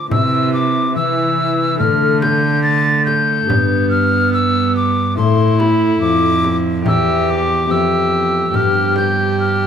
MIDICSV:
0, 0, Header, 1, 6, 480
1, 0, Start_track
1, 0, Tempo, 842697
1, 64, Time_signature, 4, 2, 24, 8
1, 5507, End_track
2, 0, Start_track
2, 0, Title_t, "Recorder"
2, 0, Program_c, 0, 74
2, 66, Note_on_c, 0, 88, 75
2, 301, Note_off_c, 0, 88, 0
2, 305, Note_on_c, 0, 86, 74
2, 541, Note_off_c, 0, 86, 0
2, 549, Note_on_c, 0, 88, 76
2, 1018, Note_off_c, 0, 88, 0
2, 1020, Note_on_c, 0, 89, 73
2, 1259, Note_off_c, 0, 89, 0
2, 1262, Note_on_c, 0, 91, 65
2, 1495, Note_off_c, 0, 91, 0
2, 1499, Note_on_c, 0, 93, 88
2, 1736, Note_off_c, 0, 93, 0
2, 1740, Note_on_c, 0, 91, 82
2, 2216, Note_off_c, 0, 91, 0
2, 2225, Note_on_c, 0, 89, 75
2, 2462, Note_off_c, 0, 89, 0
2, 2472, Note_on_c, 0, 88, 84
2, 2706, Note_off_c, 0, 88, 0
2, 2715, Note_on_c, 0, 86, 76
2, 2946, Note_off_c, 0, 86, 0
2, 2949, Note_on_c, 0, 84, 78
2, 3184, Note_on_c, 0, 83, 71
2, 3192, Note_off_c, 0, 84, 0
2, 3420, Note_off_c, 0, 83, 0
2, 3424, Note_on_c, 0, 86, 98
2, 3739, Note_off_c, 0, 86, 0
2, 3919, Note_on_c, 0, 88, 70
2, 4159, Note_on_c, 0, 86, 79
2, 4168, Note_off_c, 0, 88, 0
2, 4392, Note_on_c, 0, 88, 74
2, 4401, Note_off_c, 0, 86, 0
2, 4873, Note_on_c, 0, 89, 81
2, 4882, Note_off_c, 0, 88, 0
2, 5108, Note_off_c, 0, 89, 0
2, 5112, Note_on_c, 0, 91, 66
2, 5344, Note_off_c, 0, 91, 0
2, 5355, Note_on_c, 0, 89, 74
2, 5507, Note_off_c, 0, 89, 0
2, 5507, End_track
3, 0, Start_track
3, 0, Title_t, "Harp"
3, 0, Program_c, 1, 46
3, 0, Note_on_c, 1, 50, 45
3, 0, Note_on_c, 1, 57, 44
3, 0, Note_on_c, 1, 62, 45
3, 47, Note_on_c, 1, 60, 41
3, 53, Note_on_c, 1, 64, 40
3, 58, Note_on_c, 1, 48, 44
3, 77, Note_off_c, 1, 57, 0
3, 80, Note_off_c, 1, 62, 0
3, 81, Note_off_c, 1, 50, 0
3, 519, Note_off_c, 1, 60, 0
3, 526, Note_on_c, 1, 60, 39
3, 527, Note_off_c, 1, 64, 0
3, 534, Note_on_c, 1, 64, 43
3, 543, Note_on_c, 1, 52, 45
3, 993, Note_on_c, 1, 62, 40
3, 1003, Note_on_c, 1, 69, 43
3, 1016, Note_on_c, 1, 50, 41
3, 1035, Note_off_c, 1, 60, 0
3, 1039, Note_off_c, 1, 64, 0
3, 1042, Note_off_c, 1, 48, 0
3, 1044, Note_off_c, 1, 52, 0
3, 1959, Note_off_c, 1, 62, 0
3, 1966, Note_on_c, 1, 62, 37
3, 1971, Note_on_c, 1, 67, 41
3, 1981, Note_on_c, 1, 71, 38
3, 1987, Note_on_c, 1, 43, 44
3, 1997, Note_off_c, 1, 69, 0
3, 2004, Note_off_c, 1, 50, 0
3, 2927, Note_on_c, 1, 60, 39
3, 2933, Note_on_c, 1, 64, 46
3, 2944, Note_on_c, 1, 69, 42
3, 2952, Note_on_c, 1, 45, 50
3, 2956, Note_off_c, 1, 62, 0
3, 2959, Note_off_c, 1, 67, 0
3, 2964, Note_off_c, 1, 71, 0
3, 2967, Note_off_c, 1, 43, 0
3, 3428, Note_on_c, 1, 41, 51
3, 3881, Note_off_c, 1, 64, 0
3, 3883, Note_on_c, 1, 59, 42
3, 3888, Note_on_c, 1, 64, 42
3, 3898, Note_on_c, 1, 67, 44
3, 3903, Note_on_c, 1, 52, 48
3, 3915, Note_off_c, 1, 60, 0
3, 3923, Note_off_c, 1, 69, 0
3, 3925, Note_off_c, 1, 41, 0
3, 3927, Note_off_c, 1, 45, 0
3, 4356, Note_off_c, 1, 59, 0
3, 4362, Note_off_c, 1, 64, 0
3, 4363, Note_on_c, 1, 59, 45
3, 4368, Note_on_c, 1, 64, 43
3, 4371, Note_off_c, 1, 67, 0
3, 4378, Note_on_c, 1, 67, 45
3, 4385, Note_on_c, 1, 41, 52
3, 4842, Note_off_c, 1, 59, 0
3, 4849, Note_on_c, 1, 59, 45
3, 4854, Note_on_c, 1, 62, 46
3, 4856, Note_off_c, 1, 67, 0
3, 4863, Note_on_c, 1, 67, 47
3, 4870, Note_on_c, 1, 43, 51
3, 4874, Note_off_c, 1, 64, 0
3, 4881, Note_off_c, 1, 52, 0
3, 4882, Note_off_c, 1, 41, 0
3, 5507, Note_off_c, 1, 43, 0
3, 5507, Note_off_c, 1, 59, 0
3, 5507, Note_off_c, 1, 62, 0
3, 5507, Note_off_c, 1, 67, 0
3, 5507, End_track
4, 0, Start_track
4, 0, Title_t, "Viola"
4, 0, Program_c, 2, 41
4, 55, Note_on_c, 2, 52, 48
4, 518, Note_off_c, 2, 52, 0
4, 541, Note_on_c, 2, 52, 54
4, 1022, Note_on_c, 2, 57, 51
4, 1031, Note_off_c, 2, 52, 0
4, 1503, Note_off_c, 2, 57, 0
4, 1506, Note_on_c, 2, 57, 51
4, 1985, Note_on_c, 2, 59, 64
4, 1994, Note_off_c, 2, 57, 0
4, 2946, Note_on_c, 2, 64, 62
4, 2955, Note_off_c, 2, 59, 0
4, 3902, Note_off_c, 2, 64, 0
4, 3905, Note_on_c, 2, 67, 60
4, 4375, Note_off_c, 2, 67, 0
4, 4386, Note_on_c, 2, 67, 61
4, 4854, Note_off_c, 2, 67, 0
4, 4866, Note_on_c, 2, 67, 57
4, 5507, Note_off_c, 2, 67, 0
4, 5507, End_track
5, 0, Start_track
5, 0, Title_t, "Cello"
5, 0, Program_c, 3, 42
5, 66, Note_on_c, 3, 48, 53
5, 546, Note_on_c, 3, 52, 46
5, 555, Note_off_c, 3, 48, 0
5, 1025, Note_on_c, 3, 50, 60
5, 1033, Note_off_c, 3, 52, 0
5, 1982, Note_off_c, 3, 50, 0
5, 1986, Note_on_c, 3, 43, 52
5, 2947, Note_on_c, 3, 45, 54
5, 2955, Note_off_c, 3, 43, 0
5, 3425, Note_off_c, 3, 45, 0
5, 3429, Note_on_c, 3, 41, 60
5, 3907, Note_on_c, 3, 40, 64
5, 3916, Note_off_c, 3, 41, 0
5, 4388, Note_on_c, 3, 41, 50
5, 4396, Note_off_c, 3, 40, 0
5, 4857, Note_off_c, 3, 41, 0
5, 4861, Note_on_c, 3, 43, 59
5, 5507, Note_off_c, 3, 43, 0
5, 5507, End_track
6, 0, Start_track
6, 0, Title_t, "Frame drum"
6, 65, Note_on_c, 9, 64, 65
6, 122, Note_off_c, 9, 64, 0
6, 1029, Note_on_c, 9, 64, 44
6, 1086, Note_off_c, 9, 64, 0
6, 1267, Note_on_c, 9, 64, 54
6, 1323, Note_off_c, 9, 64, 0
6, 1749, Note_on_c, 9, 64, 40
6, 1806, Note_off_c, 9, 64, 0
6, 1992, Note_on_c, 9, 64, 68
6, 2049, Note_off_c, 9, 64, 0
6, 2952, Note_on_c, 9, 64, 38
6, 3009, Note_off_c, 9, 64, 0
6, 3190, Note_on_c, 9, 64, 47
6, 3247, Note_off_c, 9, 64, 0
6, 3670, Note_on_c, 9, 64, 45
6, 3727, Note_off_c, 9, 64, 0
6, 3906, Note_on_c, 9, 64, 66
6, 3963, Note_off_c, 9, 64, 0
6, 4865, Note_on_c, 9, 64, 46
6, 4922, Note_off_c, 9, 64, 0
6, 5103, Note_on_c, 9, 64, 47
6, 5160, Note_off_c, 9, 64, 0
6, 5507, End_track
0, 0, End_of_file